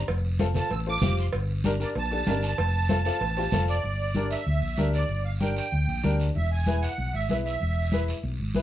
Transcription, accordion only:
0.57 0.70 A5 medium
0.73 0.79 E6 medium
0.89 1.17 D6 loud
1.20 1.27 C6 medium
1.82 1.89 D5 medium
1.98 2.42 A5 loud
2.44 3.65 A5 loud
3.69 4.28 D5 medium
4.31 4.90 E5 medium
4.94 5.23 D5 medium
5.24 5.32 F5 medium
5.41 5.55 G5 medium
5.57 6.16 G5 medium
6.36 6.50 E5 medium
6.52 6.84 G#5 medium
6.82 7.15 F#5 medium
7.14 7.28 E5 medium
7.30 7.37 E5 medium
7.46 8.04 E5 medium

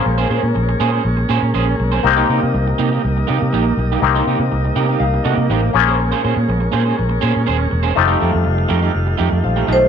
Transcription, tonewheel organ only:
0.00 7.93 A#2 medium
0.00 2.00 G#3 medium
0.00 2.01 A#3 medium
0.00 2.00 C#4 medium
2.03 5.71 G3 medium
2.03 7.92 A#3 medium
2.03 5.71 D#4 medium
5.74 7.94 G#3 medium
5.74 7.94 C#4 medium
7.96 9.88 D#3 medium
7.96 9.88 G3 medium
7.96 9.88 A3 medium
7.96 9.88 F4 medium

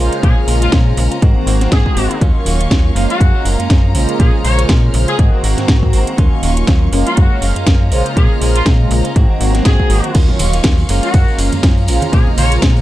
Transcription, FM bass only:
0.23 0.35 A#2 loud
0.48 0.69 A#1 medium
0.73 0.94 A#2 medium
0.97 1.09 A#1 loud
1.22 1.34 G#2 loud
1.36 1.45 G#1 soft
1.47 1.68 G#1 loud
1.72 1.83 G#2 medium
1.97 2.08 G#1 medium
2.21 2.33 D#2 loud
2.46 2.67 D#1 medium
2.71 2.92 D#2 medium
2.96 3.07 F#1 loud
3.21 3.32 F#2 loud
3.45 3.57 F#1 medium
3.60 3.68 F#2 soft
3.70 3.97 F#2 medium
3.95 4.06 A#1 medium
4.20 4.31 A#2 loud
4.44 4.65 A#1 medium
4.69 4.90 A#2 medium
4.94 5.06 A#1 loud
5.19 5.30 G#2 loud
5.33 5.42 G#1 soft
5.44 5.55 G#1 medium
5.58 5.66 G#2 soft
5.69 5.95 G#2 medium
5.93 6.05 G#1 medium
6.18 6.30 D#2 loud
6.43 6.64 D#1 medium
6.68 6.89 D#2 medium
6.93 7.04 F#1 loud
7.18 7.29 F#2 loud
7.42 7.53 F#1 medium
7.56 7.65 F#2 soft
7.67 7.93 F#2 medium
7.92 8.03 A#1 medium
8.17 8.28 A#2 loud
8.41 8.62 A#1 medium
8.66 8.87 A#2 medium
8.91 9.02 A#1 loud
9.16 9.27 G#2 loud
9.30 9.39 G#1 soft
9.40 9.61 G#1 loud
9.66 9.77 G#2 medium
9.90 10.01 G#1 medium
10.15 10.26 D#2 loud
10.40 10.61 D#1 medium
10.65 10.85 D#2 medium
10.89 11.01 F#1 loud
11.14 11.25 F#2 loud
11.39 11.50 F#1 medium
11.53 11.61 F#2 soft
11.64 11.90 F#2 medium
11.88 12.00 A#1 loud
12.13 12.25 A#2 loud
12.38 12.59 A#1 medium
12.63 12.81 A#2 medium

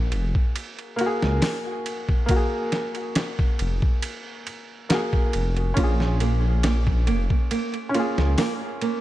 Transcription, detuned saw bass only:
0.00 0.15 A#1 loud
0.14 0.33 F1 medium
1.24 1.41 C#2 medium
3.61 3.81 F1 medium
5.35 5.73 F1 medium
5.77 7.10 A#1 loud
7.09 7.29 F1 medium
8.18 8.36 C#2 medium

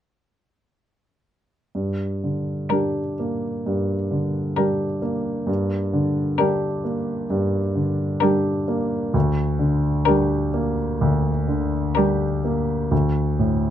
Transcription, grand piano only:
1.75 3.61 G2 soft
2.24 3.00 D3 soft
2.71 3.15 D4 soft
2.71 3.15 G4 soft
3.19 3.93 A#3 soft
3.66 5.45 G2 soft
4.11 4.84 D3 soft
4.56 4.98 D4 soft
4.56 4.98 G4 soft
5.02 5.75 A#3 soft
5.47 7.25 G2 soft
5.93 6.66 D3 soft
6.38 6.80 D4 soft
6.38 6.80 G4 soft
6.84 7.57 A#3 soft
7.30 9.10 G2 soft
7.75 8.50 D3 soft
8.21 8.64 D4 soft
8.21 8.65 G4 soft
8.68 9.14 A#3 soft
9.14 10.97 D2 soft
9.59 10.34 D3 soft
10.06 10.50 D4 soft
10.06 10.50 G4 soft
10.54 11.30 A#3 soft
11.01 12.87 D2 soft
11.48 12.24 D3 soft
11.96 12.40 D4 soft
11.96 12.39 G4 soft
12.45 12.92 A#3 soft
12.91 13.70 D2 soft
13.39 13.70 A2 soft

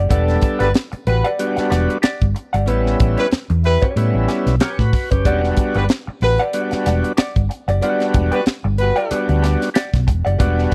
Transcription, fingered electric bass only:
0.10 0.36 E1 loud
0.60 0.72 G1 medium
0.93 muted fingered electric bass stroke medium
1.07 1.21 A1 loud
1.58 muted fingered electric bass stroke medium
1.71 1.86 E1 loud
2.03 muted fingered electric bass stroke medium
2.22 2.33 G1 medium
2.54 2.68 G1 medium
2.68 2.94 A1 loud
3.00 3.15 A1 loud
3.32 muted fingered electric bass stroke soft
3.50 3.76 E2 medium
3.96 4.11 A2 loud
4.14 4.26 A1 medium
4.46 4.58 B1 medium
4.79 4.90 A2 loud
5.12 5.25 F#1 medium
5.25 5.51 E1 loud
5.75 5.87 G1 medium
6.08 muted fingered electric bass stroke soft
6.22 6.36 A1 loud
6.73 muted fingered electric bass stroke soft
6.87 7.01 E1 medium
7.18 muted fingered electric bass stroke soft
7.36 7.48 G1 medium
7.68 7.80 F#1 loud
8.14 8.29 E1 loud
8.47 muted fingered electric bass stroke soft
8.65 8.90 G1 loud
9.11 muted fingered electric bass stroke soft
9.29 9.55 D2 medium
9.94 10.05 B1 medium
10.08 10.22 E1 medium
10.26 10.37 F#1 medium
10.40 10.65 E1 loud

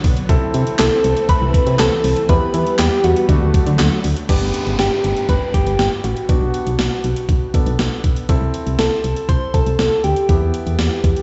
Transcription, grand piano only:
0.00 0.25 B3 medium
0.00 0.25 D4 medium
0.00 0.25 F#4 medium
0.29 2.25 C4 medium
0.29 2.25 E4 medium
0.29 2.25 A4 medium
2.29 3.27 B3 medium
2.29 3.27 E4 medium
2.29 3.27 G4 medium
3.29 4.27 A3 medium
3.29 4.27 D4 medium
3.29 4.27 F#4 medium
4.29 6.25 B3 medium
4.29 6.25 D4 medium
4.29 6.25 G4 medium
6.29 7.52 B3 medium
6.29 7.52 D4 medium
6.29 7.52 F#4 medium
7.54 8.29 B3 medium
7.54 8.29 D4 medium
7.54 8.28 A4 medium
8.29 10.25 C4 medium
8.29 10.25 E4 medium
8.29 10.25 A4 medium
10.29 11.22 B3 medium
10.29 11.22 E4 medium
10.29 11.22 G4 medium

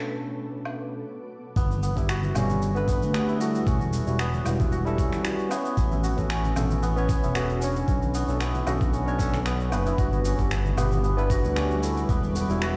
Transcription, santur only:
1.56 1.82 B3 medium
1.83 2.87 B3 medium
1.97 3.28 E4 medium
2.09 3.40 F#4 loud
2.35 3.66 C#4 medium
2.88 3.14 B3 loud
3.14 4.19 B3 medium
3.28 4.59 E4 medium
3.40 4.71 F#4 loud
3.67 4.98 C#4 medium
4.19 4.45 B3 loud
4.46 5.50 B3 medium
4.60 5.91 E4 medium
4.72 6.03 F#4 medium
4.98 6.30 C#4 medium
5.51 5.77 B3 loud
5.77 6.82 B3 medium
5.91 7.23 E4 medium
6.03 7.35 F#4 medium
6.30 7.61 C#4 medium
6.83 7.08 B3 loud
7.09 8.14 B3 medium
7.23 8.54 E4 medium
7.35 8.67 F#4 loud
7.62 8.92 C#4 medium
8.14 8.40 B3 loud
8.41 9.45 B3 medium
8.55 9.86 E4 medium
8.67 9.98 F#4 loud
8.93 10.25 C#4 medium
9.46 9.72 B3 loud
9.72 10.77 B3 medium
9.86 11.17 E4 medium
9.99 11.30 F#4 loud
10.25 11.56 C#4 medium
10.77 11.04 B3 loud
11.04 12.09 B3 medium
11.18 12.49 E4 medium
11.30 12.61 F#4 loud
11.57 12.77 C#4 medium
12.09 12.35 B3 medium
12.36 12.77 B3 medium
12.50 12.77 E4 medium
12.62 12.77 F#4 loud

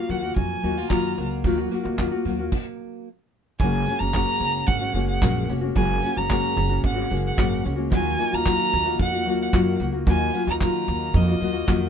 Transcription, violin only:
0.00 0.12 F5 medium
0.10 0.36 F#5 medium
0.37 0.87 G#5 medium
0.90 1.28 A#5 medium
3.60 4.01 G#5 loud
3.99 4.68 A#5 loud
4.67 5.08 F#5 loud
5.08 5.46 F#5 medium
5.76 6.19 G#5 loud
6.18 6.85 A#5 loud
6.86 7.23 F#5 medium
7.27 7.63 F#5 medium
7.94 8.36 G#5 loud
8.35 9.01 A#5 loud
9.02 9.38 F#5 loud
9.42 9.79 F#5 medium
10.08 10.45 G#5 loud
10.50 10.55 A#5 loud
10.63 11.18 A#5 loud
11.17 11.89 D#5 medium

